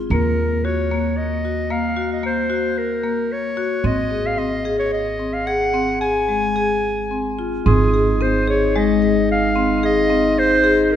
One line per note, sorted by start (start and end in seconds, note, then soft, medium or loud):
0.10 3.80 D#2 medium
0.10 0.38 A#3 medium
0.10 0.66 A#4 medium
0.65 0.78 F#4 medium
0.65 1.19 C#5 medium
0.91 1.19 A#3 medium
1.17 1.73 D#5 medium
1.45 1.58 F#4 soft
1.70 1.84 A#3 medium
1.70 2.11 F5 medium
1.97 2.10 F#4 medium
2.13 2.24 D#5 medium
2.23 2.37 A#3 medium
2.23 2.79 C5 medium
2.50 2.77 F#4 medium
2.78 3.34 A#4 medium
3.03 3.31 A#3 medium
3.32 3.88 C#5 medium
3.57 3.71 F#4 medium
3.84 7.62 G#1 medium
3.84 3.98 C4 medium
3.84 4.28 D#5 medium
4.11 4.25 G#4 medium
4.26 4.40 F5 medium
4.38 4.52 C4 medium
4.38 4.78 D#5 medium
4.65 4.93 G#4 medium
4.79 4.91 C#5 medium
4.93 5.35 D#5 medium
5.19 5.33 C4 medium
5.33 5.48 F5 medium
5.47 5.61 G#4 medium
5.47 6.00 F#5 medium
5.74 5.88 C4 medium
6.01 6.15 G#4 medium
6.01 7.35 G#5 medium
6.28 6.42 G#3 medium
6.56 6.84 G#4 medium
7.11 7.25 C4 medium
7.39 7.53 F4 medium
7.65 10.96 G#1 medium
7.65 7.80 C4 medium
7.65 10.96 D#4 medium
7.65 8.23 G#4 medium
7.94 8.08 G#4 medium
8.21 8.35 C4 medium
8.21 8.48 C5 medium
8.48 8.62 G#4 medium
8.48 8.79 C#5 medium
8.76 8.89 G#3 medium
8.76 9.30 D#5 medium
9.02 9.30 G#4 medium
9.32 9.80 F5 medium
9.56 9.70 C4 medium
9.83 9.97 G#4 medium
9.83 10.40 D#5 medium
10.10 10.37 C4 medium
10.39 10.83 C5 medium
10.64 10.91 G#4 medium
10.83 10.93 C5 medium
10.92 10.96 A#4 medium